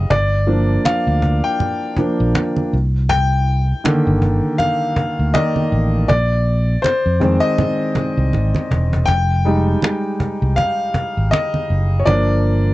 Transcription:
Already playing: D#5 F5
0.10 G1 D5, cajon bass, muted conga
0.33 cajon slap
0.47 F3 A#3 D4, cajon slap
0.69 cajon slap
0.85 F5, muted fingered electric bass stroke, cajon slap, high conga
1.07 D2, cajon slap
1.22 cajon bass
1.43 G5, cajon slap
1.59 cajon slap, muted conga, low conga
1.81 cajon slap
1.97 F3 A#3 D4, muted fingered electric bass stroke, cajon bass
2.19 A#1, cajon slap
2.35 cajon slap, high conga
2.57 high conga
2.73 C2
2.94 cajon slap
3.09 G5, cajon bass, muted conga
3.31 cajon slap
3.47 cajon slap
3.69 cajon slap
3.84 D3 D#3 A#3, muted fingered electric bass stroke, cajon slap, high conga
4.06 G1, cajon slap
4.22 cajon bass
4.43 cajon slap
4.58 F5, cajon bass, muted conga
4.82 cajon slap
4.96 muted fingered electric bass stroke, cajon bass
5.19 D2, cajon slap
5.34 D#3 A#3 D5 D#5, cajon slap, high conga
5.56 high conga
5.72 A1
5.95 cajon slap
6.08 A#1 D5, cajon bass, muted conga
6.31 cajon slap
6.47 cajon slap
6.69 cajon slap
6.82 C5, muted fingered electric bass stroke, cajon slap, high conga
7.06 F2, cajon slap
7.20 D#3 G#3 C4, cajon bass
7.40 D#5, cajon slap
7.58 cajon bass, muted conga, low conga
7.81 cajon slap
7.95 muted fingered electric bass stroke, cajon bass, muted conga, low conga
8.17 C2, cajon slap
8.33 G#1, cajon slap, high conga
8.55 cajon slap, high conga
8.71 E1, cajon bass
8.93 cajon bass
9.06 F1 G5, cajon bass, muted conga
9.30 cajon slap
9.45 G3 G#3 D#4, cajon slap
9.68 cajon slap
9.82 cajon slap, high conga
10.05 cajon slap
10.20 muted fingered electric bass stroke, cajon bass
10.42 C2, cajon slap
10.56 F5, cajon bass, muted conga
10.80 cajon slap
10.94 muted fingered electric bass stroke, cajon bass, muted conga
11.17 G#1, cajon slap
11.31 D#5, cajon slap, high conga
11.54 cajon slap, high conga
11.70 F#1
11.92 cajon slap
12.00 C#5
12.05 G1 F3 A#3 D4 D5, cajon bass, muted conga
12.29 cajon slap
12.45 cajon slap
12.66 cajon slap

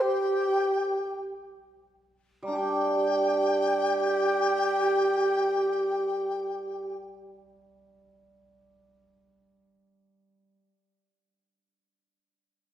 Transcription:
Already playing: G5
0.01 G4
2.43 G3 A#5
2.48 D4
2.53 G4 G5
2.57 G4

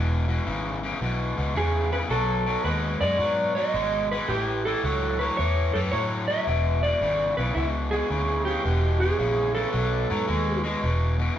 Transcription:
Already playing: E1 E2 B2
0.28 E2 B2
0.46 G#1 E2 C#3
0.83 E2 C#3
1.01 B1 E2 B2
1.37 C#2 E2 B2
1.55 E2 C#3 G#4
1.92 E2 C#3 B4
2.10 B1 B2 F#3 A4
2.47 B2 F#3
2.64 D#2 B2 G#3 B4
3.01 F#2 B2 G#3 D5
3.19 G#2 B2 F#3
3.55 B2 F#3 D#5
3.74 G#1 B2 G#3
4.11 B2 G#3 B4
4.28 A1 A2 E3 G4
4.65 A2 E3 A4
4.84 C#2 A2 F#3
5.19 A2 F#3 B4
5.37 E2 A2 E3 C#5
5.73 F#2 A2 E3 A4
5.92 A2 F#3 C#5
6.28 A2 F#3 E5
6.47 E1 E2 B2
6.83 E2 B2 D5
7.01 G#1 E2 C#3
7.37 B1 E2 C#3 B4
7.55 C#2 E2 B2 E4
7.91 E2 B2 G#4
8.10 D2 E2 C#3
8.45 E2 C#3 G4
8.65 E1 E2 B2
9.00 E2 B2 G#4
9.19 A#1 E2 C#3
9.55 E2 C#3 A4
9.72 B1 B2 F#3
10.10 G#2 B2 F#3
10.27 D#2 B2 G#3
10.64 B2 G#3
10.82 E1 E2 B2
11.19 E2 B2

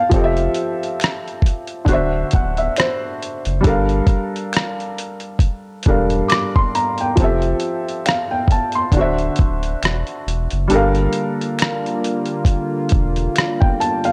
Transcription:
Already playing: F5 G5 A5
0.10 F1 F3 C4 G4, kick, closed hi-hat
0.16 A4 D#5
0.24 E5
0.37 closed hi-hat
0.54 closed hi-hat
0.83 closed hi-hat
1.00 finger snap, closed hi-hat
1.04 cross-stick
1.28 closed hi-hat
1.42 kick, closed hi-hat
1.67 closed hi-hat
1.85 D1 D3 D4, kick, closed hi-hat
1.89 F#4 C5
1.93 E5
2.31 D1 F#5, kick, closed hi-hat
2.57 E5, closed hi-hat
2.77 C5, finger snap, cross-stick, closed hi-hat
3.23 closed hi-hat
3.45 F#1, closed hi-hat
3.61 G3 D4, kick, closed hi-hat
3.65 G1 A4 A#4 F5
3.89 closed hi-hat
4.07 kick, closed hi-hat
4.36 closed hi-hat
4.53 finger snap, cross-stick, closed hi-hat
4.80 closed hi-hat
4.98 closed hi-hat
5.20 closed hi-hat
5.39 kick, closed hi-hat
5.83 E1 G3 D4, kick, closed hi-hat
5.88 A4 A#4 F5
6.10 closed hi-hat
6.28 D6, finger snap, cross-stick, closed hi-hat
6.56 C6, kick
6.75 A#5, closed hi-hat
6.98 G5, closed hi-hat
7.16 F1 F3 C4, kick, closed hi-hat
7.20 G4 A4 E5
7.42 closed hi-hat
7.60 closed hi-hat
7.88 closed hi-hat
8.06 F5, finger snap, cross-stick, closed hi-hat
8.31 G5
8.48 kick, closed hi-hat
8.52 A5
8.72 C6, closed hi-hat
8.92 D1 D3 D4, kick, closed hi-hat
8.97 F#4 C5 E5
9.18 closed hi-hat
9.36 D1, kick, closed hi-hat
9.63 closed hi-hat
9.83 E1, finger snap, cross-stick, closed hi-hat
10.07 closed hi-hat
10.27 E1, closed hi-hat
10.50 F#1, closed hi-hat
10.68 G1 D3 G3 A#3 D4 F4, closed hi-hat
10.72 A4 A#4 F5
10.95 closed hi-hat
11.13 closed hi-hat
11.41 closed hi-hat
11.59 finger snap, cross-stick, closed hi-hat
11.86 closed hi-hat
12.04 closed hi-hat
12.26 closed hi-hat
12.45 kick, closed hi-hat
12.89 E1, kick, closed hi-hat
13.16 closed hi-hat
13.36 finger snap, cross-stick, closed hi-hat
13.60 G5, kick
13.80 A5, closed hi-hat
14.04 F5, closed hi-hat

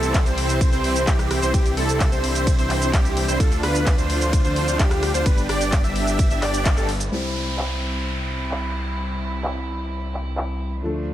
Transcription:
Already playing: C2 E3 G3 C4 E4 A4
0.03 closed hi-hat, shaker
0.14 kick, clap, closed hi-hat, ride, shaker
0.26 C2 C4 E4 C5, closed hi-hat, shaker
0.38 open hi-hat
0.49 closed hi-hat, shaker
0.61 kick, closed hi-hat, ride, shaker
0.72 C2 C4 E4 C5, closed hi-hat, shaker
0.84 open hi-hat
0.96 closed hi-hat, shaker
1.07 C2 C4 E4 G4, kick, clap, closed hi-hat, ride, shaker
1.19 cross-stick, closed hi-hat, shaker
1.31 cross-stick, open hi-hat
1.42 C2 C4 E4 C5, closed hi-hat, shaker
1.54 C2 C4 D4 E4 G4, kick, closed hi-hat, ride, shaker
1.66 closed hi-hat, shaker
1.77 C2 C4 E4 A4, open hi-hat
1.89 closed hi-hat, shaker
2.00 kick, clap, closed hi-hat, ride, shaker
2.12 C2 C4 E4 C5, closed hi-hat, shaker
2.24 open hi-hat
2.35 closed hi-hat, shaker
2.47 kick, closed hi-hat, ride, shaker
2.58 C2 C4 E4 C5, closed hi-hat, shaker
2.70 clap, open hi-hat
2.82 closed hi-hat, shaker
2.93 C2 C4 E4 G4, kick, clap, closed hi-hat, ride, shaker
3.05 closed hi-hat, shaker
3.17 open hi-hat
3.28 C2 C4 E4 C5, closed hi-hat, shaker
3.40 D2 F3 A3 D4 F4 A4, kick, closed hi-hat, ride, shaker
3.52 closed hi-hat, shaker
3.63 D2 D4 F4 B4, cross-stick, open hi-hat
3.75 closed hi-hat, shaker
3.86 kick, clap, closed hi-hat, ride, shaker
3.98 D2 D4 F4 C5, closed hi-hat, shaker
4.10 open hi-hat
4.21 closed hi-hat, shaker
4.33 kick, closed hi-hat, ride, shaker
4.45 D2 D4 F4 C5, closed hi-hat, shaker
4.56 open hi-hat
4.68 closed hi-hat, shaker
4.79 D2 D4 F4 G4, kick, clap, closed hi-hat, ride, shaker
4.91 cross-stick, closed hi-hat, shaker
5.03 cross-stick, open hi-hat
5.14 D2 D4 F4 C5, closed hi-hat, shaker
5.26 G1 G3 B3 D4 G4 B4, kick, closed hi-hat, ride, shaker
5.38 closed hi-hat, shaker
5.49 G1 D4 G4 D5, cross-stick, open hi-hat
5.61 open hi-hat, shaker
5.72 kick, clap, closed hi-hat, ride, shaker
5.84 G1 D4 G4 E5, closed hi-hat, shaker
5.96 open hi-hat
6.07 closed hi-hat, shaker
6.19 kick, closed hi-hat, ride, shaker
6.31 G1 D4 G4 E5, closed hi-hat, shaker
6.42 G1 D4 G4 D5, cross-stick, clap, open hi-hat
6.54 closed hi-hat, shaker
6.65 kick, clap, closed hi-hat, ride, shaker
6.77 G1 D4 G4 A4, closed hi-hat, shaker
6.89 open hi-hat
7.00 closed hi-hat, shaker
7.11 C2 G3 C4 E4 C5, downlifter
7.58 clap
8.51 clap
9.44 clap
10.14 clap
10.37 clap
10.83 D2 F3 A3 D4 A4

